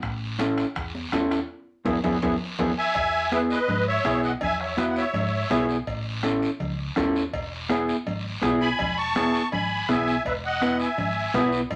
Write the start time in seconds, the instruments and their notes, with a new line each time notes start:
0.02 fingered electric bass A1, bombo low, bombo rim, high conga, high timbale, long guiro
0.39 clean electric guitar C#4 E4 A4, bombo rim, high conga, high timbale, short guiro
0.57 bombo rim, high timbale, short guiro
0.75 fingered electric bass E2, bombo low, bombo rim, high conga, high timbale, long guiro
0.95 high conga
1.12 fingered electric bass E2, clean electric guitar C#4 E4 A4, bombo rim, high conga, high timbale, low timbale, short guiro
1.31 bombo rim, high timbale, short guiro
1.85 fingered electric bass E2, clean electric guitar B3 E4 G#4, bombo low, low conga, high timbale, long guiro
2.04 fingered electric bass E2, clean electric guitar B3 E4 G#4, bombo low, low conga, high timbale, long guiro
2.22 fingered electric bass E2, clean electric guitar B3 E4 G#4, bombo low, low conga, high timbale, long guiro
2.59 fingered electric bass E2, clean electric guitar B3 E4 G#4, bombo low, low conga, high timbale, long guiro
2.78 accordion E5 G#5
2.95 fingered electric bass E2, bombo low, cowbell, high conga, long guiro
3.32 clean electric guitar B3 E4 G#4, accordion B4 E5, bombo rim, cowbell, high conga, short guiro
3.50 accordion B4 D#5, short guiro
3.68 fingered electric bass G#2, cowbell, high conga, low conga, long guiro
3.88 accordion C#5 E5
4.04 fingered electric bass B1, clean electric guitar B3 E4 G#4, bombo low, bombo rim, cowbell, high conga, short guiro
4.23 accordion D#5 F#5, short guiro
4.41 fingered electric bass E2, accordion E5 G#5, bombo low, cowbell, high conga, low conga, long guiro
4.60 accordion C#5 E5, bombo rim
4.77 clean electric guitar B3 E4 F#4, accordion B4 E5, bombo rim, cowbell, high conga, short guiro
4.90 accordion F#5
4.96 accordion C#5 E5, short guiro
5.13 fingered electric bass G#2, cowbell, high conga, low conga, long guiro
5.50 fingered electric bass B1, clean electric guitar B3 E4 G#4, bombo low, bombo rim, cowbell, high conga, low timbale, short guiro
5.69 short guiro
5.87 fingered electric bass A1, bombo low, cowbell, high conga, long guiro
6.23 clean electric guitar C#4 E4 A4, bombo rim, cowbell, high conga, short guiro
6.42 short guiro
6.60 fingered electric bass C#2, cowbell, high conga, low conga, long guiro
6.96 fingered electric bass E2, clean electric guitar C#4 E4 A4, bombo low, bombo rim, cowbell, high conga, low timbale, short guiro
7.16 short guiro
7.33 fingered electric bass E1, bombo low, cowbell, high conga, long guiro
7.69 clean electric guitar B3 E4 G#4, bombo rim, cowbell, high conga, short guiro
7.88 short guiro
8.06 fingered electric bass G#1, cowbell, high conga, low conga, long guiro
8.42 fingered electric bass B1, clean electric guitar B3 E4 G#4, bombo low, bombo rim, cowbell, high conga, low timbale, short guiro
8.61 accordion G#5 B5, short guiro
8.79 fingered electric bass E1, bombo low, cowbell, high conga, low conga, long guiro
8.97 accordion A5 C#6
9.16 clean electric guitar B3 E4 G#4, bombo rim, cowbell, high conga, short guiro
9.34 short guiro
9.52 fingered electric bass G#1, accordion G#5 B5, cowbell, high conga, low conga, long guiro
9.89 fingered electric bass B1, clean electric guitar B3 E4 G#4, accordion E5 G#5, bombo low, bombo rim, cowbell, high conga, short guiro
10.07 short guiro
10.25 fingered electric bass E1, accordion B4 E5, bombo low, cowbell, high conga, long guiro
10.45 accordion D#5 F#5
10.62 clean electric guitar B3 E4 B4, bombo rim, cowbell, high conga, short guiro
10.80 accordion E5 G#5, short guiro
10.98 fingered electric bass G#1, cowbell, high conga, low conga, long guiro
11.34 fingered electric bass B1, clean electric guitar B3 E4 B4, bombo low, bombo rim, cowbell, high conga, low timbale, short guiro
11.52 short guiro
11.71 fingered electric bass A1, bombo low, cowbell, high conga, low conga, long guiro